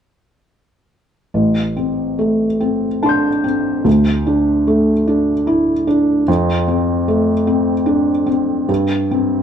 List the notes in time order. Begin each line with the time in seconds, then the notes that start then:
1.34 A1
1.76 C4
2.19 A3
2.60 C4
3.03 D4 A5 C6
3.09 G6
3.44 C4
3.84 D2
4.27 D4
4.67 A3
5.07 D4
5.47 E4
5.87 D4
6.28 F2
6.68 C4
7.08 A3
7.47 C4
7.86 D4
8.26 C4
8.69 G2
9.11 C4